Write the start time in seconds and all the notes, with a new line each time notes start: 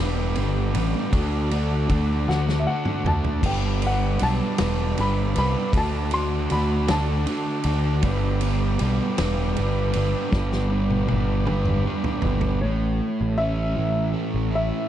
Already playing: G3 B3 B4 D5 G5 D6
0.00 E1 D4
0.35 G1 G3 B3 D4 B4, ride
0.74 A1 B3 D4 B4, ride
1.12 D2 D3 D4 F#4 A4 D5 F#5, kick, ride
1.51 D4 F#4 A4, ride
1.88 D2 D3 D4 F#4 A4, kick, ride
2.28 D2 D4 F#4 A4 F#5, snare
2.49 snare
2.60 E5
2.66 D3 D4 F#4 A4 F#5
2.85 mid tom
3.04 D2 D4 F#4 A4 A5, mid tom
3.24 floor tom
3.42 G1 G3 B3 D4 G4 B4 G5, kick, crash, ride
3.47 B4 D6
3.82 B3 D4 B4, ride
3.86 F#5
4.19 B1 G3 B3 D4 B4 A5, ride
4.58 E1 B3 D4 B4, snare, ride
4.97 G1 G3 B3 D4 B4 B5, ride
5.35 C2 B3 D4 B4 B5, ride
5.73 D2 D3 D4 F#4 A4, kick, ride
5.77 A4 F#5 A5 D6
6.11 D4 F#4 A4 C6, ride
6.50 D2 D3 D4 F#4 A4 B5, ride
6.88 D2 D4 F#4 A4 A5, snare, ride
7.26 D3 D4 F#4 A4, ride
7.64 D2 D4 F#4 A4, ride
8.03 G1 G3 B3 D4 B4 G5, kick, ride
8.41 B3 D4 B4, ride
8.79 B1 G3 B3 D4 B4, ride
9.17 E1 B3 D4 B4, snare, ride
9.55 G1 G3 B3 D4 B4, ride
9.93 G1 B3 D4 B4, ride
10.31 G1 G3 B3 D4 B4, kick, snare
10.52 snare
10.69 B3 D4 B4
10.90 high tom
11.07 G3 B3 D4 B4, high tom
11.12 G1
11.46 G1 B3 D4 B4, mid tom
11.65 mid tom
11.85 G3 B3 D4 B4
12.04 floor tom
12.22 G1 B3 D4 B4, floor tom
12.41 floor tom
12.61 A1 A2 C#5
13.21 A1
13.38 C#4 E5
13.76 A1 E3
14.13 A3
14.34 A1
14.51 E4
14.55 E5